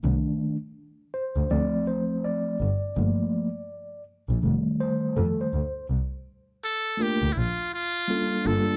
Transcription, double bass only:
X:1
M:4/4
L:1/16
Q:"Swing 16ths" 1/4=82
K:Cdor
V:1 name="Double bass" clef=bass
C,,4 z3 D,, D,,4 z2 G,,, z | G,,,4 z3 B,,, F,,,4 F,,2 D,,2 | C,,4 z3 D,, B,,,4 z2 G,,, z |]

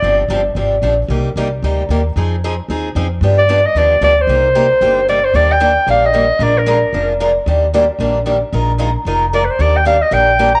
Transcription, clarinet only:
X:1
M:4/4
L:1/16
Q:"Swing" 1/4=226
K:Cm
V:1 name="Clarinet"
d2 z12 z2 | z16 | z16 | z2 d4 e2 d4 d2 c2- |
c12 d2 c2 | [K:Eb] d2 g6 f2 e6 | d2 B8 z6 | z16 |
z12 d3/2 _c/2 =c2 | d2 g2 f2 e2 g6 b2 |]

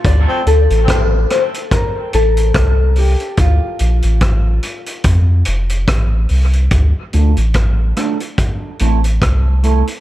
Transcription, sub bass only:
X:1
M:4/4
L:1/16
Q:"Swing 16ths" 1/4=72
K:Dm
V:1 name="Sub bass" clef=bass
D,, z D,, A,,,3 z4 A,,,2 C,,3 z | D,, z B,,, A,,,3 z2 F,,2 F,,,2 A,,,2 C,,2 | D,, z D,, A,,,3 z4 A,,,2 C,,3 z |]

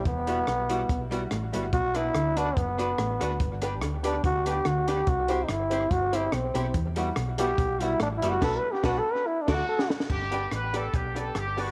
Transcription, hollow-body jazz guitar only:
X:1
M:4/4
L:1/8
Q:"Swing" 1/4=143
K:G
V:1 name="Hollow-body jazz guitar"
z [G,B,F] z [G,B,F] z [G,B,F] z [G,B,F] | z [DFB] z [DFB] z [DFB] z [DFB] | z [DGB] z [DGB] z [DGB] z [DGB] | z [EGc] z [EGc] z [EGc] z [EGc] |
z [G,B,F] z [G,B,F] z [G,B,F] z [G,B,F] | [DFB] z [DFB] z2 [FAd] z2 | z [GBd] z [GBd] z [GBd] z [GBd] |]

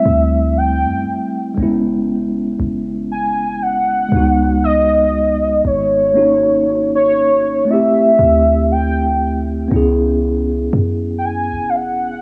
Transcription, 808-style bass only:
X:1
M:4/4
L:1/16
Q:"Swing 16ths" 1/4=59
K:F#mix
V:1 name="808-style bass" clef=bass
=D,,3 F,, z2 F,,,4 F,,,6 | C,,6 G,,,8 z2 | =D,,6 C,,4 F,,3 E,,,3 |]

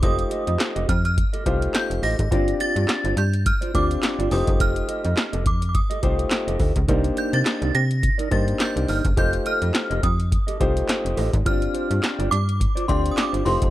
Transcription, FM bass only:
X:1
M:4/4
L:1/16
Q:"Swing 16ths" 1/4=105
K:Fmix
V:1 name="FM bass" clef=bass
F,,,2 z F,, z F,,, F,,3 z C,,2 z F,,, A,,, _A,,, | G,,,2 z G,, z G,,, G,,3 z D,,2 z G,,, F,,, ^F,,, | F,,,2 z F,, z F,,, F,,3 z C,,2 z F,,, D,, _D,, | C,,2 z C, z C,, C,3 z G,,2 z C,, G,,, ^F,,, |
F,,,2 z F,, z F,,, F,,3 z C,,2 z F,,, A,,, _A,,, | G,,,2 z G,, z G,,, G,,3 z D,,2 z G,,, F,,, ^F,,, |]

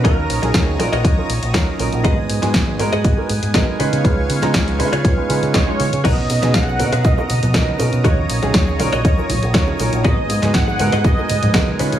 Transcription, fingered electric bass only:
X:1
M:4/4
L:1/16
Q:1/4=120
K:Abdor
V:1 name="Fingered electric bass" clef=bass
E,,2 B,,, B,,, E,,2 B,,, B,,, E,, z B,,, B,,, z2 B,,, B,,, | A,,,2 A,, A,, A,,,2 A,, A,, A,,, z A,, A,, A,,, z D, D, | D,,2 D, D, D,,2 D, D, D,, z D, D, D,, z D, D, | =B,,,2 =B,, B,, B,,,2 B,, B,, B,,, z B,, B,, B,,, z B,, B,, |
E,,2 B,,, B,,, E,,2 B,,, B,,, E,, z B,,, B,,, z2 B,,, B,,, | A,,,2 A,, A,, A,,,2 A,, A,, A,,, z A,, A,, A,,, z D, D, |]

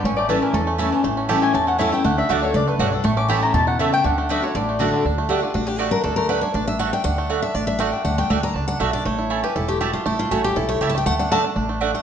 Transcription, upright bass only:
X:1
M:4/4
L:1/8
Q:1/4=240
K:D
V:1 name="Upright bass" clef=bass
A,,,4 E,,4 | A,,,4 E,,4 | D,,2 D,,2 C,,2 B,,,2 | A,,,4 E,,4 |
D,,4 A,,,4 | D,,4 A,,,4 | D,,4 A,,,4 | D,,4 A,,,4 |
D,,2 D,,2 C,,2 B,,,2 | A,,,4 E,,,4 | A,,,2 A,,,2 B,,,2 C,,2 | D,,4 A,,,4 |]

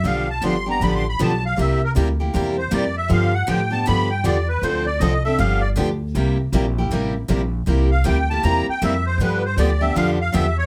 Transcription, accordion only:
X:1
M:4/4
L:1/8
Q:"Swing" 1/4=158
K:Gmix
V:1 name="Accordion"
f a c' _b (3=b c' b a f | e _B z3 c d e | f ^f g a b g d B | c d _e =e f d z2 |
z8 | z f g a _b g e c | B c d e f f e ^c |]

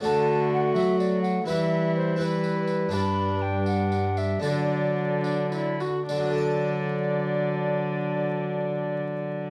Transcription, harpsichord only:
X:1
M:6/8
L:1/8
Q:3/8=76
K:D
V:1 name="Harpsichord"
[A,Fd]6 | [EB]3 [EB]3 | [DB]6 | [DA]6 |
[D,F,DAd]6- | [D,F,DAd]6 |]
V:2 name="Harpsichord" clef=bass
D,3 F,3 | E,6 | G,,6 | D,4- D, z |
z6 | z6 |]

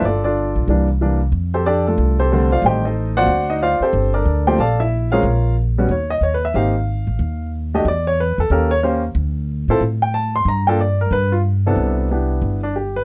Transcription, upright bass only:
X:1
M:4/4
L:1/8
Q:"Swing" 1/4=184
K:C
V:1 name="Upright bass" clef=bass
G,,,3 B,,, C,,4 | [K:F] F,,4 C,,4 | A,,,4 D,,3 z | G,,,2 D,,2 B,,,4 |
B,,,4 _E,,2 E,,2 | _A,,,3 =A,,, _E,,4 | E,,3 E,, _E,,4 | D,,3 A,, A,,4 |
G,,4 G,,4 | [K:Gmix] C,,4 G,,,4 |]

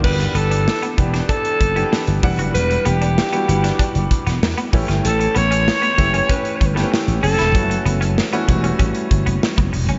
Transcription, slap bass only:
X:1
M:4/4
L:1/16
Q:1/4=96
K:Edor
V:1 name="Slap bass" clef=bass
G,,,2 G,,,3 z E,,,2 z2 F,,,2 z G,,, E,,, F,,, | E,,,2 E,,,3 z G,,,2 z F,,, z E,,, E,, z A,,, G,,, | A,,,2 A,,,3 z F,,,2 z2 G,,,2 z A,,, F,,, E,,, | F,,,2 F,,,3 z E,,,2 A,,, z G,,, F,,, z F,,, E,,, F,,, |]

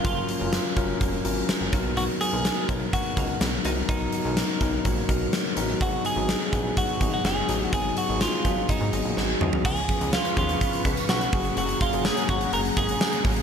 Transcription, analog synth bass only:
X:1
M:4/4
L:1/16
Q:1/4=125
K:Cblyd
V:1 name="Analog synth bass" clef=bass
G,,,2 z G,,,2 z G,,,2 F,,,2 A,,,2 G,,, G,,, =B,,,2- | =B,,,2 z B,,,2 z B,,,2 z2 D,,2 B,,,2 =C,,2 | =B,,,2 z B,,,2 z B,,,2 ^A,,,2 B,,,2 z2 =A,,,2 | A,,,2 z A,,,2 z B,,,2 z2 A,,,2 G,,,2 =A,,,2 |
A,,,2 z A,,,2 z A,,,2 z A,, A,,, B,,, A,,,2 =D,, z | D,,2 z D,,2 z E,,2 z2 D,,2 C,,2 G,,,2 | G,,,2 z G,,,2 z A,,,2 G,,,2 A,,,2 z2 =A,,,2 |]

